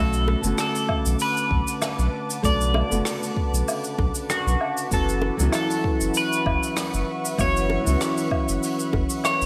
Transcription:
Already playing: B1 D3 A3 B3 C#4 F#4 B4 F#5 A5 D6
0.00 A4
0.13 cabasa
0.28 high bongo
0.41 F#1 D3 A3 B3, cabasa
0.45 C#4 F#4
0.57 A4, cross-stick, open hi-hat, cabasa
0.75 open hi-hat, cabasa
0.89 kick, low woodblock
1.06 B1, cabasa
1.19 B4, open hi-hat, cabasa
1.37 cabasa
1.51 B1, kick
1.67 open hi-hat, cabasa
1.82 cross-stick, open hi-hat, cabasa, low woodblock
1.99 B1, cabasa
2.30 open hi-hat, cabasa
2.42 B1 C#3 D3 A3 B3 F#4 D5, kick, open hi-hat, cabasa
2.61 cabasa
2.74 high bongo, low woodblock
2.88 F#1 D3 A3 B3, cabasa
2.92 C#3 F#4
3.05 cross-stick, open hi-hat, cabasa
3.23 open hi-hat, cabasa
3.37 kick
3.53 B1, cabasa
3.68 open hi-hat, cabasa, low woodblock
3.84 cabasa
3.98 B1, kick, high bongo
4.15 open hi-hat, cabasa
4.30 F#4, cross-stick, open hi-hat, cabasa
4.46 B1, cabasa
4.61 low woodblock
4.77 open hi-hat, cabasa
4.91 F#1 E3 F#3 B3 C#4 F#4 A4 E5 C#6, kick, open hi-hat, cabasa
5.09 cabasa
5.22 high bongo
5.37 C#2 E3 F#3 B3, cabasa
5.41 C#4 F#4
5.52 A4, cross-stick, open hi-hat, cabasa, low woodblock
5.70 open hi-hat, cabasa
5.84 kick
6.01 F#1, cabasa
6.14 B4, open hi-hat, cabasa
6.33 cabasa
6.46 F#1, kick, low woodblock
6.63 open hi-hat, cabasa
6.77 cross-stick, open hi-hat, cabasa
6.94 F#1, cabasa
7.25 open hi-hat, cabasa
7.38 F#1 E3 F#3 B3 C#4 F#4 C#5, kick, open hi-hat, cabasa, low woodblock
7.57 open hi-hat, cabasa
7.70 high bongo
7.84 C#2 E3 F#3 B3, open hi-hat, cabasa
7.88 C#4 F#4
8.01 cross-stick, open hi-hat, cabasa
8.17 open hi-hat, cabasa
8.31 kick, low woodblock
8.48 F#1, cabasa
8.63 open hi-hat, cabasa
8.79 cabasa
8.93 F#1, kick, high bongo
9.10 open hi-hat, cabasa
9.24 C#5, cross-stick, open hi-hat, cabasa, low woodblock
9.41 F#1, cabasa

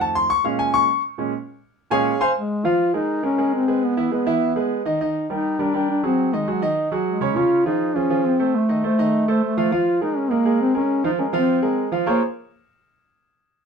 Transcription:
Already playing: F2 D#3 A3
0.01 A5
0.15 C6
0.30 C#6
0.44 A#2 G#3 C#4 F5
0.59 G#5
0.74 C#6
1.18 A#2 G#3 C#4
1.90 A#2 G#3 C#4 G#4 C#5 F5 G#5
2.21 C5 F5 G#5 C6
2.36 G#3
2.65 F3 F4 F5
2.94 G#3 D#4 G#4 A#4
3.23 G#3 C#4 G#4 A#4
3.38 G#3 G#4 A#4
3.55 C4
3.68 G#3 G#4 B4
3.83 B3
3.97 E3 E4 E5
4.11 G#3 B3 G#4 B4
4.26 E3 E4 E5
4.56 G#3 G#4 B4
4.86 D#3 D#4 D#5
5.01 D#3 D#4 D#5
5.30 G3 D#4 G4 A#4
5.59 G3 D4 G4 A#4
5.74 G3 D4 G4 A#4
5.90 D4
6.03 F#3 C4 F#4 G#4
6.33 D#3 G#3 D#4 D#5
6.47 F#3 F#4 G#4
6.62 D#3 D#4 D#5
6.92 F#3 F#4 G#4
7.07 G#3
7.21 C#3 C#4 C#5
7.36 C#3 C#4 F4 C#5
7.66 F3 D#4 F4 G#4
7.96 F3 C#4 F4 G#4
8.10 F3 F4 G#4
8.26 C4
8.39 A3 A4 C5
8.55 A3
8.69 D#3 D#4 D#5
8.84 A3 A4 C5
8.98 D#3 D#4 D#5
9.28 A3 A4 C5
9.44 A3
9.57 F3 F4 F5
9.72 F3 F4 F5
10.01 G#3 D#4 G#4 A#4
10.17 C#4
10.31 G#3 A#3 G#4 A#4
10.45 G#3 G#4 A#4
10.61 C4
10.74 G#3 C#4 G#4 A#4
11.04 F3 D#4 F4 F5
11.19 G#3 C#4 G#4 A#4
11.33 F3 C4 F4 F5
11.62 G#3 G#4 A#4
11.92 F3 F4 F5
12.06 A#3 F4 G#4 A#4 C5 C#5

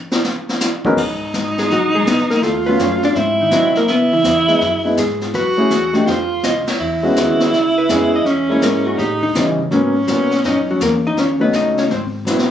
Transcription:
0.12 snare
0.24 snare
0.49 snare
0.61 snare, hi-hat pedal
0.85 G#2 F#3 B3 C#4 D#4 A#4, kick
0.97 G#2 D#4, brush sweep, kick, snare, crash
1.34 G#1, kick, snare, hi-hat pedal
1.58 G#3 G#4, snare
1.70 A#1 F#3 F#4, brush sweep, kick, snare
1.95 G#3 G#4
2.06 B1 B3 B4, kick, snare, hi-hat pedal
2.19 snare
2.30 A#3 A#4, muted upright bass stroke, snare
2.43 D#2 A3 F4 A4, brush sweep, kick, snare
2.66 F#3 A3 B3 C#4 F4 B4
2.79 F#2 C#4 C#5, kick, snare, hi-hat pedal
3.03 D4 D5, snare
3.15 G#2 C4 E4 C5, brush sweep, kick, snare
3.41 D#3 D#4
3.51 C3 F#3 C4 D#4 E4, kick, snare, hi-hat pedal
3.55 F#4
3.75 A#3 A#4, muted upright bass stroke, snare
3.88 C#3 B3 E4 B4, brush sweep, kick, snare
4.13 E3 E4
4.24 E2, kick, snare, hi-hat pedal
4.48 G#3 B3 D#4 E4, snare
4.61 F#2, brush sweep, kick, snare
4.84 G#3 B3 D#4 E4
4.97 G#2 G#4, kick, snare, hi-hat pedal
5.09 snare
5.21 snare
5.34 F#2 F#4 B4, brush sweep, kick, snare
5.57 A3 C#4 E4 G#4 A4
5.70 E2, kick, snare, hi-hat pedal
5.93 A3 D4 D#4 G4, snare
6.07 F2 F4 C5, brush sweep, kick, snare
6.43 C2 D#5, kick, snare, hi-hat pedal
6.67 C#5, muted upright bass stroke, snare, ride
6.79 E2 E4, brush sweep
7.03 G#3 B3 C#4 F#4
7.16 D#2, kick, snare, hi-hat pedal
7.40 snare
7.53 C#2, brush sweep, kick, snare
7.78 B4
7.89 F2 G#3 B3 C#4 G#4 C#5, kick, snare, hi-hat pedal
8.16 D#5
8.25 E2 C#4, brush sweep, kick, snare
8.30 E5
8.49 G#3 A#3 C#4 E4 C#5
8.62 G#2 A#4, kick, snare, hi-hat pedal
8.87 F#4
8.98 A2 D#4 G4, brush sweep, kick, snare
9.22 D#4, kick
9.35 C#3 E3 G3 C#4 D#4, kick, snare, hi-hat pedal
9.58 kick
9.71 G#2 F#3 A#3 B3 C#4, brush sweep, snare
10.07 A#2 F#3 A#3 B3 C#4, kick, snare, hi-hat pedal
10.31 snare
10.44 F#2 D#4 D#5, brush sweep, kick, snare
10.71 F#3 F#4
10.80 E2 A#3 A#4, kick, snare, hi-hat pedal
11.07 D#4 D#5
11.16 D#2 C#4 C#5, brush sweep, kick, snare
11.40 F#3 A3 B3 C#4 D#4 B4
11.53 C#2 D#4 D#5, kick, snare, hi-hat pedal
11.77 C#4 C#5, snare
11.90 G#1 C4 C5, brush sweep, kick, snare
12.25 B1 F#3 B3 C4 E4, snare, hi-hat pedal
12.39 snare

